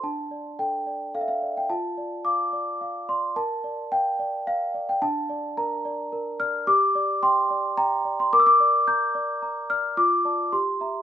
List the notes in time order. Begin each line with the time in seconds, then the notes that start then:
0.03 D4 A5
0.31 D5
0.59 A4 G5
0.87 D5
1.15 A4 F5
1.21 E5
1.28 F5
1.42 D5
1.57 G5
1.70 F4 A5
1.98 D5
2.25 F5 D6
2.53 D5
2.81 F5
3.09 D5 C6
3.36 A#4 A5
3.64 D5
3.92 F5 G5
4.19 D5
4.47 F5
4.74 D5
4.89 G5
5.02 D4 A5
5.29 D5
5.57 A#4 A#5
5.85 D5
6.12 A#4
6.40 D5 F6
6.67 G4 D6
6.95 D5
7.23 G5 C6
7.50 D5
7.77 G5 A#5
8.05 D5
8.20 C6
8.33 A#4 D6
8.40 E6
8.46 D6
8.60 D5
8.88 A#5 G6
9.15 D5
9.42 A#5
9.70 D5 F6
9.97 F4 D6
10.25 D5 A5
10.52 G4 C6
10.81 E5 A#5